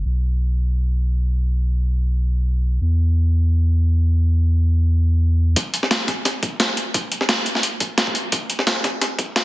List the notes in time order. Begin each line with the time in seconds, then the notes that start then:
0.05 B1
2.81 E2
5.56 kick, closed hi-hat
5.74 closed hi-hat
5.83 snare
5.91 snare, closed hi-hat
6.08 kick, snare, closed hi-hat
6.25 snare, closed hi-hat
6.43 kick, closed hi-hat
6.60 snare, closed hi-hat
6.77 closed hi-hat
6.94 kick, closed hi-hat
7.12 closed hi-hat
7.21 snare
7.29 snare, closed hi-hat
7.46 closed hi-hat
7.55 snare
7.63 closed hi-hat
7.80 kick, closed hi-hat
7.98 snare, closed hi-hat
8.07 kick
8.15 closed hi-hat
8.32 kick, closed hi-hat
8.50 closed hi-hat
8.59 snare
8.67 snare, closed hi-hat
8.84 kick, snare, closed hi-hat
9.02 snare, closed hi-hat
9.19 kick, closed hi-hat
9.36 snare, closed hi-hat